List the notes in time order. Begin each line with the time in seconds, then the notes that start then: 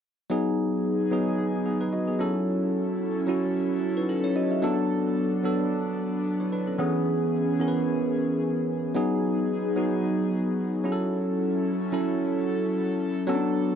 0.30 F#3 B3 D#4 G#4
1.11 F#3 B3 D#4 G#4
1.66 B3 G#4
1.81 D#4 B4
1.93 F#4 D#5
2.08 B3 G#4
2.19 F#3 C#4 E4 A4
3.27 F#3 C#4 E4 F#4
3.97 D#4 B4
4.09 C#4 A4
4.24 E4 C#5
4.36 F#4 D#5
4.51 G#4 E5
4.62 F#3 B3 D4 A4
5.43 F#3 B3 D4 A4
6.40 E4 C#5
6.52 D4 B4
6.67 C#4 A4
6.78 E3 B3 C#4 G#4
7.59 E3 B3 C#4 A#4
7.68 B4
8.95 F#3 B3 D#4 G#4
9.76 F#3 B3 D#4 F#4
10.84 F#3 C#4 E4 G#4 A4
10.92 A4
11.92 F#3 C#4 E4 A4
13.27 F#3 B3 C#4 D4 A4
13.35 D4